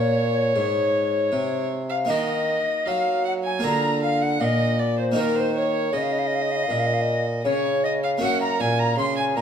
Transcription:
Already playing: harpsichord A#2 F4 G#4, bassoon A#2, violin C#5, recorder C#5
0.56 bassoon G#2, harpsichord G#2
1.32 harpsichord C3, bassoon C3
1.90 violin F5, recorder F5
2.05 harpsichord A#3 D#4 F#4, violin D#5
2.09 bassoon D#3, harpsichord D#3, recorder D#5
2.86 bassoon F#3, harpsichord F#3, violin F5, recorder F5
3.25 violin F#5, recorder F#5
3.44 violin G#5, recorder G#5
3.59 harpsichord A#3 F4 G#4
3.63 bassoon D3, harpsichord D3, violin A#5, recorder A#5
4.03 violin F5, recorder F5
4.22 violin F#5, recorder F#5
4.40 bassoon A#2, harpsichord A#2, violin D#5, recorder F5
4.45 recorder D#5
4.79 violin D5, recorder D5
4.97 violin C5, recorder C5
5.12 harpsichord A#3 D#4 F#4
5.16 bassoon D#3, harpsichord D#3, violin A#4
5.21 recorder A#4
5.35 violin C5
5.40 recorder C5
5.56 violin C#5, recorder C#5
5.92 bassoon C#3, harpsichord C#3, violin D#5
5.97 recorder D#5
6.03 recorder F5
6.12 recorder D#5
6.19 recorder F5
6.27 recorder D#5
6.35 recorder F5
6.42 recorder D#5
6.51 recorder F5
6.56 recorder D#5
6.63 recorder F5
6.68 bassoon A#2, harpsichord A#2
6.73 recorder D#5
6.80 recorder F5
6.86 recorder D#5
6.94 recorder F5
7.02 recorder D#5
7.45 bassoon C#3, harpsichord C#3, recorder C#5, violin C#5
7.84 recorder D#5, violin D#5
8.03 violin F5, recorder F5
8.18 bassoon F#2, harpsichord A#3 C#4 F#4
8.22 harpsichord F#2, violin F#5, recorder F#5
8.41 violin A#5, recorder A#5
8.59 bassoon A#2, harpsichord A#2, violin G#5, recorder G#5
8.79 violin A#5, recorder A#5
8.97 bassoon C#3, harpsichord C#3, violin C6, recorder C6
9.16 violin G#5, recorder G#5
9.36 bassoon A#2, harpsichord A#2, violin A#5, recorder A#5

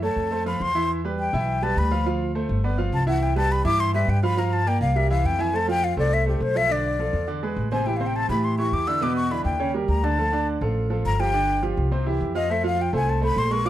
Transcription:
Already playing: upright bass F#2
0.02 grand piano A3 A4 C#5, flute A5
0.16 upright bass F2
0.31 grand piano A3 A4 C5
0.46 grand piano F3 F4 F5, flute B5
0.60 upright bass E2, flute C6
0.75 grand piano E3 E4 E5
1.04 grand piano G3 G4 B4
1.19 flute G5
1.33 upright bass B1, grand piano E3 E4 E5
1.62 grand piano G3 G4 B4, flute A5
1.76 upright bass D2, flute B5
1.91 grand piano F3 F4 F5
2.06 grand piano F3 F4 F5
2.35 grand piano A3 A4 C5
2.49 upright bass G1
2.64 grand piano B3 B4 D5
2.78 grand piano F3 F4 F5
2.92 upright bass C2, flute A5
3.07 grand piano E3 E4 E5, flute F#5
3.23 flute G5
3.36 grand piano G3 G4 B4, flute A5
3.52 flute B5
3.65 upright bass G2, grand piano E3 E4 E5, flute D6
3.80 flute C6
3.94 grand piano G3 G4 B4, flute E5
4.08 upright bass G2, flute G5
4.23 grand piano F3 F4 F5, flute B5
4.37 grand piano F3 F4 F5, flute A#5
4.53 flute A5
4.66 grand piano A#3 A#4 D5, flute G5
4.81 upright bass C2, flute F5
4.96 grand piano G3 G4 A#4, flute E5
5.10 grand piano E3 E4 E5, flute F5
5.24 upright bass F2, flute G5
5.38 grand piano E3 E4 E5, flute G#5
5.53 grand piano A3 A4 C5, flute A5
5.68 grand piano F3 F4 F5, flute G5
5.84 flute F5
5.97 upright bass C2, grand piano A3 A4 C5, flute D5
6.14 flute E5
6.26 grand piano A3 A4 C5, flute G4
6.40 upright bass B1, flute C5
6.55 grand piano F3 F4 A4, flute E5
6.69 grand piano D3 D4 D5, flute D5
6.99 grand piano F3 F4 A4
7.13 upright bass E2
7.28 grand piano D3 D4 D5
7.43 grand piano G#3 G#4 B4
7.56 upright bass A1
7.72 grand piano C3 C4 C5, flute G#5
7.86 grand piano E3 E4 G4, flute G5
7.97 grand piano C3 C4, flute F5
8.01 grand piano C5
8.07 flute G5
8.16 flute A5
8.29 upright bass A2, grand piano E3 E4 G4, flute B5
8.44 flute C6
8.58 grand piano E3 E4 G4, flute C#6
8.72 upright bass E2, flute D6
8.87 grand piano D3 D4 E4, flute E6
9.01 grand piano B2 B3 B4, flute D6
9.16 flute C#6
9.30 grand piano D3 D4 E4, flute B5
9.45 upright bass D#2, flute G5
9.60 grand piano C#3 C#4 C#5
9.74 grand piano G3 G4 A#4
9.88 upright bass D2, flute A#5
10.03 grand piano D3 D4 D5, flute A5
10.18 grand piano F3 F4 A4
10.33 grand piano D3 D4 D5
10.61 upright bass A1, grand piano F3 F4 A4
10.90 grand piano F3 F4 A4
11.05 upright bass G1, flute A#5
11.19 grand piano F3 F4 G4, flute G5
11.34 grand piano D3 D4 D5
11.62 grand piano F3 F4 G4
11.77 upright bass C2
11.91 grand piano C3 C4 C5
12.06 grand piano E3 E4 G4
12.21 upright bass F2
12.35 grand piano F3 F4 F5, flute D#5
12.50 grand piano A3 A4 C5, flute E5
12.64 grand piano F3 F4 F5, flute F5
12.81 flute G5
12.93 upright bass C2, grand piano A3 A4 C5, flute G#5
13.10 flute A5
13.21 grand piano A3 A4 C5, flute B5
13.36 upright bass A#1, flute C6
13.51 grand piano G#3 G#4 A#4, flute C#6
13.65 grand piano F3 F4 F5, flute D6

